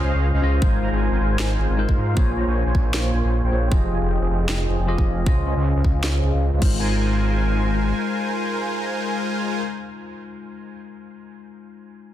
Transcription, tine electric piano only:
Already playing: C#3 C#4 F4 C5 D#5
0.42 C#3 C#4 F4 C5 D#5
0.60 G#3 D#4 F4 A#4 C5
1.77 G#3 D#4 F4 A#4 C5
2.15 A#3 F4 G#4 C5 C#5
3.51 A#3 F4 G#4 C5 C#5
3.70 F3 F4 G4 G#4
3.74 D#5
4.87 F3 F4 G4 G#4 D#5
5.24 C#3 C#4 F4 C5
5.28 D#5
6.59 G#3 D#4 F4
6.63 A#4 C5

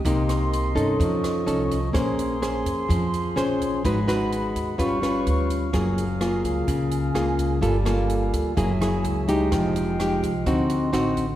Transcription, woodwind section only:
0.07 A#4 D#5 C6
1.02 A4 C#6
1.95 G#4 C6
3.84 G#4 F#5 B5
4.79 B4 F5 C#6
5.75 G#4 G#5
7.62 A4 F5
8.58 G#4 E5
9.51 D#5 F5 G5
10.47 F#4 C6

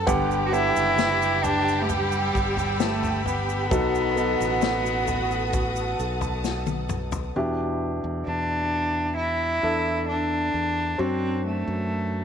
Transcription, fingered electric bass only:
0.07 G1
0.77 F#1
2.36 G1
3.71 B1
4.40 A1
5.99 B1
7.36 E2
8.04 E2
8.27 E2
9.63 E2
10.54 E2
10.99 F#2
11.68 F#2

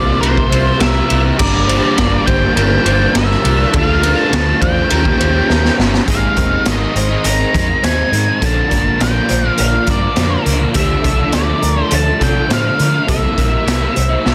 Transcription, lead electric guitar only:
Already playing: D5
0.21 C5
0.80 E5
1.39 D5
2.26 G5
3.17 E5
3.77 F5
4.18 A5
4.62 G5
6.10 F5
6.68 D#5
7.26 A#5
7.85 G#5
8.45 A5
9.02 G5
9.48 F5
9.60 F5
9.91 D5
10.76 E5
11.35 D5
11.81 C5
11.95 A5
12.24 G5
12.53 F5
13.09 E5

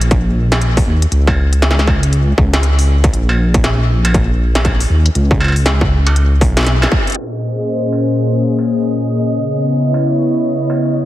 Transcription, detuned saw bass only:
Already playing: A#1
0.87 D#2
1.12 C#2
2.38 C#2
3.14 A#1
4.90 D#2
5.15 C#2
6.41 B1

